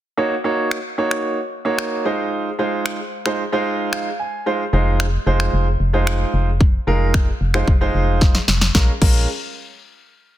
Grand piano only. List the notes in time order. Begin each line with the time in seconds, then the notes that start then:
0.17 A#3 D#4 F#4 C#5
0.44 A#3 D#4 F#4 C#5
0.98 A#3 D#4 F#4 C#5
1.65 A#3 D#4 F#4 C#5
2.05 G#3 D#4 F4 C5
2.59 G#3 D#4 F4 C5
3.26 G#3 D#4 F4 C5
3.52 G#3 D#4 F4 C5
3.93 F5
4.19 G#5
4.46 G#3 D#4 F4 C5
4.73 G#3 D#4 F4 C5
5.26 G#3 D#4 F4 C5
5.93 G#3 D#4 F4 C5
6.87 G#3 D#4 F4 A#4
7.54 G#3 D#4 F4 C5
7.81 G#3 D#4 F4 C5
8.75 G#3 C#4 F4 A#4
9.02 G#3 C#4 F4 A#4